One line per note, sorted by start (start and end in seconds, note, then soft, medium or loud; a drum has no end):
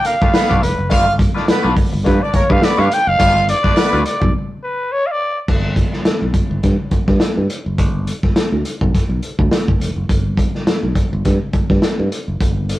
0.05 0.15 A#3 medium
0.05 0.15 A#4 medium
0.05 0.64 F5 loud
0.05 muted clean electric guitar stroke soft
0.05 closed hi-hat medium
0.21 0.31 A3 medium
0.21 0.31 D4 medium
0.21 0.31 F4 medium
0.21 0.31 B4 medium
0.21 kick loud
0.21 snare soft
0.33 0.57 B3 loud
0.33 0.57 B4 loud
0.33 snare loud
0.33 closed hi-hat loud
0.49 0.60 B1 medium
0.49 0.61 A3 medium
0.49 0.61 D4 medium
0.49 0.61 F4 medium
0.49 0.61 D5 medium
0.49 kick medium
0.62 0.75 F1 medium
0.62 0.91 B4 medium
0.62 muted clean electric guitar stroke soft
0.62 closed hi-hat medium
0.78 0.91 F#1 medium
0.78 muted clean electric guitar stroke soft
0.90 1.23 G1 loud
0.90 1.05 A3 loud
0.90 1.05 D4 medium
0.90 1.06 F4 loud
0.90 1.14 F4 loud
0.90 1.05 B4 loud
0.90 1.14 F5 loud
0.90 kick loud
0.90 closed hi-hat medium
1.06 muted clean electric guitar stroke medium
1.18 muted clean electric guitar stroke medium
1.18 kick loud
1.18 closed hi-hat medium
1.35 1.45 A3 medium
1.35 1.45 D4 medium
1.35 1.46 D4 medium
1.35 1.45 F4 medium
1.35 1.44 B4 medium
1.35 1.46 D5 medium
1.35 snare soft
1.47 1.72 B3 loud
1.47 1.72 B4 loud
1.47 muted clean electric guitar stroke soft
1.47 muted fingered electric bass stroke medium
1.47 snare loud
1.47 closed hi-hat medium
1.63 1.74 B1 medium
1.63 1.75 A3 medium
1.63 1.75 D4 medium
1.63 1.75 F4 loud
1.63 1.75 B4 loud
1.76 muted clean electric guitar stroke soft
1.76 kick loud
1.76 open hi-hat medium
1.92 2.02 G1 medium
1.92 muted clean electric guitar stroke soft
2.04 2.18 G2 loud
2.04 2.20 A3 medium
2.04 2.20 D4 medium
2.04 2.20 F4 loud
2.04 2.20 B4 medium
2.04 2.24 B4 medium
2.04 kick medium
2.04 snare soft
2.04 closed hi-hat medium
2.22 2.32 D4 medium
2.22 2.37 D5 medium
2.22 2.32 D5 medium
2.33 2.44 A#3 medium
2.33 2.44 A#4 medium
2.33 2.53 C#5 medium
2.33 muted clean electric guitar stroke soft
2.33 muted fingered electric bass stroke medium
2.33 kick medium
2.33 closed hi-hat medium
2.50 2.59 G2 medium
2.50 2.59 A3 medium
2.50 2.59 D4 medium
2.50 2.59 F4 medium
2.50 2.59 B4 medium
2.50 2.66 F5 loud
2.50 kick loud
2.62 2.86 B3 loud
2.62 2.86 B4 loud
2.62 2.81 D5 loud
2.62 snare loud
2.62 closed hi-hat loud
2.77 2.87 G2 loud
2.77 2.89 A3 medium
2.77 2.89 D4 medium
2.77 2.89 F4 medium
2.77 2.90 D5 medium
2.77 2.95 F5 loud
2.90 3.10 G5 loud
2.90 muted clean electric guitar stroke soft
2.90 closed hi-hat medium
3.07 3.16 F#1 medium
3.07 3.49 F5 loud
3.07 muted clean electric guitar stroke medium
3.19 3.52 G1 loud
3.19 3.34 A3 medium
3.19 3.34 D4 medium
3.19 3.34 F4 medium
3.19 3.43 F4 loud
3.19 3.34 B4 loud
3.19 3.43 F5 loud
3.19 kick loud
3.19 closed hi-hat medium
3.35 muted clean electric guitar stroke soft
3.48 4.02 D5 loud
3.48 muted clean electric guitar stroke soft
3.48 closed hi-hat medium
3.63 3.73 A3 medium
3.63 3.73 D4 medium
3.63 3.75 D4 medium
3.63 3.73 F4 medium
3.63 3.73 B4 medium
3.63 3.75 D5 medium
3.63 kick medium
3.63 snare soft
3.76 3.99 B3 loud
3.76 4.00 B4 loud
3.76 muted fingered electric bass stroke soft
3.76 snare loud
3.76 closed hi-hat medium
3.92 4.02 D2 medium
3.92 4.03 A3 medium
3.92 4.03 D4 medium
3.92 4.03 F4 loud
3.92 4.04 B4 medium
4.04 4.33 D5 medium
4.04 muted clean electric guitar stroke soft
4.04 closed hi-hat medium
4.20 4.31 B1 loud
4.20 muted clean electric guitar stroke medium
4.20 kick loud
4.63 4.94 B4 medium
4.92 5.08 C#5 loud
5.07 5.13 F5 medium
5.12 5.40 D5 loud
5.48 5.81 G1 medium
5.48 kick loud
5.48 crash medium
5.76 kick medium
5.76 closed hi-hat medium
5.93 snare soft
6.05 muted fingered electric bass stroke soft
6.05 snare loud
6.05 closed hi-hat medium
6.22 6.31 B1 medium
6.34 kick medium
6.34 closed hi-hat medium
6.51 6.60 G1 medium
6.63 6.75 G2 loud
6.63 kick medium
6.63 snare soft
6.63 closed hi-hat medium
6.91 muted fingered electric bass stroke soft
6.91 kick medium
6.91 closed hi-hat medium
7.08 7.17 G2 medium
7.08 kick medium
7.08 snare soft
7.20 snare loud
7.20 closed hi-hat medium
7.37 7.46 G2 medium
7.50 closed hi-hat medium
7.66 7.79 F#1 medium
7.78 8.11 G1 loud
7.78 kick loud
7.78 closed hi-hat medium
8.07 closed hi-hat medium
8.23 kick medium
8.23 snare soft
8.36 muted fingered electric bass stroke soft
8.36 snare loud
8.36 closed hi-hat medium
8.52 8.61 D2 medium
8.65 closed hi-hat medium
8.81 8.90 B1 medium
8.81 kick medium
8.95 kick medium
8.95 snare soft
8.95 closed hi-hat medium
9.09 9.19 B1 medium
9.23 closed hi-hat medium
9.39 9.48 D2 medium
9.39 kick medium
9.51 snare loud
9.51 closed hi-hat loud
9.68 9.77 G1 medium
9.68 kick medium
9.80 9.92 F1 medium
9.80 closed hi-hat medium
9.96 10.06 F#1 medium
10.09 10.42 G1 medium
10.09 kick loud
10.09 closed hi-hat medium
10.37 kick medium
10.37 closed hi-hat medium
10.55 snare soft
10.67 muted fingered electric bass stroke soft
10.67 snare loud
10.67 closed hi-hat medium
10.83 10.92 B1 medium
10.95 kick medium
10.95 closed hi-hat medium
11.13 11.22 G1 loud
11.25 11.37 G2 loud
11.25 kick medium
11.25 snare soft
11.25 closed hi-hat medium
11.53 muted fingered electric bass stroke soft
11.53 kick medium
11.53 closed hi-hat medium
11.70 11.79 G2 medium
11.70 kick medium
11.70 snare soft
11.82 snare loud
11.82 closed hi-hat loud
11.99 12.08 G2 loud
12.12 closed hi-hat medium
12.28 12.37 F#1 medium
12.40 12.73 G1 medium
12.40 kick loud
12.40 closed hi-hat medium
12.69 closed hi-hat medium